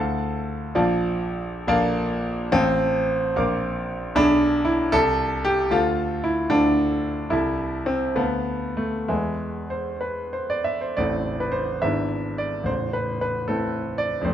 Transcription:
Already playing: D2 E4 A4 F5 A5
0.75 A#1 F3 D5 F5 A5
1.67 A#1 A#3 D5 F5 A5
2.52 A1 C4 C5 F5 A5
3.36 A#1 A#4 F5 D6
4.15 B1 D4 G#4 E5 B5
4.65 E4
4.92 C2 A4 E5 A5
5.45 G4
5.70 D2 F4 A4 F5 A5
6.24 E4
6.50 D2 D4 A4 F5 A5
7.30 C2 E4 A4 E5 A5
7.86 C4
8.15 D2 B3 B4 F5 A5
8.77 A3
9.08 E2 G#3 B4 E5 G#5
9.70 C5
10.01 B4
10.33 C5
10.50 D5
10.64 E5
10.81 C5
10.97 A0 A1 C4 E4 A4 D5
11.40 B4
11.52 C5
11.82 G#1 G#2 B3 D4 E4 E5
12.38 D5
12.63 A0 A1 C5
12.93 B4
13.21 B4
13.48 A3 C4 E4 A4
13.98 D5
14.21 F1 F2 A3 C4 C5
14.26 A4

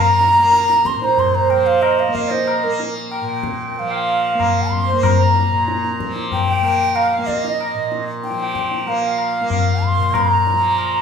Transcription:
Already playing: A#2 F3 A#3 A5
0.02 A#5
0.21 tabla te
0.38 A#3
0.53 tabla te
0.70 tabla te
0.85 C6, tabla ke
0.95 A#2
1.02 C5 A#5, tabla te
1.18 C6, tabla tin, tabla ge
1.35 C5 A#5
1.50 F3 G5, tabla na
1.66 F5
1.82 D#5, tabla na
1.98 D#5 F5
2.08 A#3
2.13 D#5 F5, tabla ke
2.29 C5 D#5, tabla te
2.47 tabla na
2.63 A#3 A#4
2.79 A#4, tabla te
3.11 G5, tabla na
3.21 A#2
3.27 G5
3.43 tabla ke
3.70 G5
3.75 F5 G5, tabla tin
3.79 F3
3.89 F5
4.08 tabla na
4.35 A#3
4.40 tabla na, tabla ge
4.71 C6, tabla ge
4.87 C5
4.93 A#3
5.03 A#5 C6, tabla na, tabla ge
5.20 A#5
5.36 tabla te
5.50 A#2
5.68 tabla te
5.84 tabla te
6.00 tabla ke
6.04 F3
6.16 tabla te
6.32 G5, tabla tin, tabla ge
6.50 G5
6.62 A#3, tabla na
6.96 F5, tabla na
7.12 F5
7.18 A#3
7.27 D#5, tabla ke
7.44 D#5, tabla te
7.61 tabla na
7.74 A#2
7.92 tabla te
8.23 G5, tabla te
8.30 F3
8.40 G5, tabla te
8.55 tabla ke
8.71 tabla te
8.87 A#3 F5, tabla tin
9.04 F5
9.18 tabla na
9.41 A#3
9.50 tabla na, tabla ge
9.82 C6, tabla ge
9.97 A#2
10.14 A#5, tabla na, tabla ge
10.25 C6
10.32 A#5
10.47 tabla te
10.54 F3
10.78 tabla na

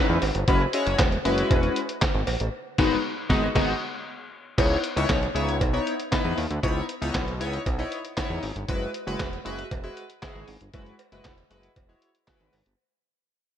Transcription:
Already playing: G#3 C#4 D#4 E4 B4
0.09 E2
0.22 G#1, open hi-hat, cowbell
0.35 G1, closed hi-hat
0.48 F#1 G#3 C#4 E4 F#4 B4, kick, closed hi-hat, cowbell
0.73 G#3 C#4 E4 F#4 C#5, closed hi-hat
0.86 F#1, closed hi-hat
0.99 E1, kick, snare, clap, closed hi-hat, cowbell
1.12 closed hi-hat
1.25 F#1 G#3 C#4 E4 F#4 B4, closed hi-hat
1.38 closed hi-hat
1.51 E1, kick, closed hi-hat, cowbell
1.63 closed hi-hat
1.76 closed hi-hat
1.89 closed hi-hat
2.02 kick, snare, clap, closed hi-hat, cowbell
2.15 G#1
2.27 A#1, open hi-hat, cowbell
2.40 A1, closed hi-hat
2.78 G#1 G#3 B3 D#4 F#4 B4, kick, snare, crash
3.29 G#1 G#3 B3 D#4 F#4, kick, snare
3.55 G#1 G#3 B3 D#4 F#4, kick, snare, crash
4.58 C#2 B3 D#4 E4 C#5, kick, closed hi-hat, crash, cowbell
4.84 closed hi-hat
4.96 C#2 B3 D#4 E4 C#5, closed hi-hat
5.09 B1, kick, snare, clap, closed hi-hat, cowbell
5.23 closed hi-hat
5.34 C#2 B3 D#4 E4 C#5, closed hi-hat
5.49 closed hi-hat
5.61 B1, kick, closed hi-hat, cowbell
5.73 B3 D#4 E4 C#5, closed hi-hat
5.87 closed hi-hat
6.00 closed hi-hat
6.12 B3 D#4 E4 B4, kick, snare, clap, closed hi-hat, cowbell
6.25 E2
6.38 D#2, open hi-hat
6.51 D2, closed hi-hat
6.63 C#2 B3 D#4 E4 C#5, kick, closed hi-hat, cowbell
6.89 closed hi-hat
7.01 C#2 B3 D#4 E4 C#5, closed hi-hat
7.14 B1, kick, snare, clap, closed hi-hat, cowbell
7.28 closed hi-hat
7.40 C#2 B3 D#4 E4 C#5, closed hi-hat
7.53 closed hi-hat
7.66 B1, kick, closed hi-hat, cowbell
7.78 B3 D#4 E4 C#5, closed hi-hat
7.92 closed hi-hat
8.05 closed hi-hat
8.17 B3 D#4 E4 C#5, kick, snare, clap, closed hi-hat, cowbell
8.30 E2
8.43 G#1, open hi-hat
8.56 G1, closed hi-hat
8.68 F#1 G#3 E4 F#4 B4, kick, closed hi-hat, cowbell
8.94 closed hi-hat
9.07 F#1 G#3 E4 F#4 B4, closed hi-hat
9.20 E1, kick, snare, clap, closed hi-hat, cowbell
9.33 closed hi-hat
9.45 F#1 G#3 E4 F#4 B4, closed hi-hat
9.59 closed hi-hat
9.71 E1, kick, closed hi-hat, cowbell
9.83 G#3 E4 F#4 B4, closed hi-hat
9.97 closed hi-hat
10.10 closed hi-hat
10.22 G#3 E4 F#4 G#4, kick, snare, clap, closed hi-hat, cowbell
10.35 G#1
10.48 G#1, open hi-hat
10.61 G1, closed hi-hat
10.74 F#1 G#3 E4 F#4 B4, kick, closed hi-hat, cowbell
10.86 closed hi-hat
10.99 closed hi-hat, cowbell
11.12 F#1 G#3 E4 F#4 B4, closed hi-hat
11.24 E1, kick, snare, clap, closed hi-hat, cowbell
11.38 closed hi-hat
11.50 F#1 G#3 E4 F#4 B4, closed hi-hat
11.63 closed hi-hat
11.76 E1, kick, closed hi-hat, cowbell
11.89 G#3 E4 F#4 C#5
12.02 closed hi-hat
12.15 closed hi-hat
12.27 G#3 E4 F#4 B4, kick, snare, clap, closed hi-hat, cowbell
12.41 G#1, closed hi-hat
12.53 G#1, open hi-hat, cowbell
12.66 G1, closed hi-hat

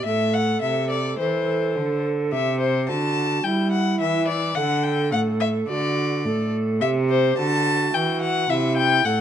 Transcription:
0.05 A2 A4 E5
0.34 F#5
0.62 C3 E5
0.90 D5
1.19 E3 A4 C5
1.76 D3
2.32 C3 G4 E5
2.60 C5
2.88 D3 F#4 A5
3.44 G3 E4 G5
3.72 F#5
4.00 E3 E5
4.28 D5
4.55 D3 A4 F#5
4.83 G5
5.12 A2 F#5
5.40 E5
5.69 D3 F#4 D5
6.25 A2 A4
6.81 C3 G4 E5
7.09 C5
7.38 D3 F#4 A5
7.94 E3 G5
8.21 F#5
8.50 C3 E4 E5
8.77 G5
9.05 A2 A4 F#5

